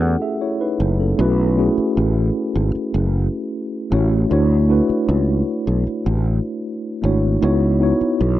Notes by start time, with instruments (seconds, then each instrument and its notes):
Already playing: fretless electric bass E2, tine electric piano A3 C#4 E4 F#4 G4 G#4 B4
0.02 tine electric piano A4 F#5
0.22 tine electric piano G#4 E5
0.41 tine electric piano E4 C#5
0.61 tine electric piano D#4 B4
0.80 fretless electric bass F#1
1.00 tine electric piano C#4 A4
1.18 fretless electric bass B1, tine electric piano A3 C#4 E4 F#4 B4
1.57 tine electric piano A3 C#4 E4 F#4 G#4
1.77 muted fretless electric bass stroke
1.97 fretless electric bass A1
2.55 fretless electric bass G#1
2.75 muted fretless electric bass stroke
2.94 fretless electric bass F#1
3.91 fretless electric bass A1, tine electric piano A3 C#4 E4 F#4 C#5
4.29 fretless electric bass D2, tine electric piano A3 D4 E4 F#4 C#5
4.68 tine electric piano A3 D4 E4 F#4 B4
4.89 muted fretless electric bass stroke
5.09 fretless electric bass C#2
5.67 fretless electric bass B1
5.87 muted fretless electric bass stroke
6.06 fretless electric bass A1
7.02 fretless electric bass G#1, tine electric piano A3 D4 E4 F#4 C#5
7.41 fretless electric bass C#2, tine electric piano B3 D#4 E4 F#4 C#5
7.80 tine electric piano B3 D#4 E4 F#4 C#5
8.01 muted fretless electric bass stroke
8.21 fretless electric bass B1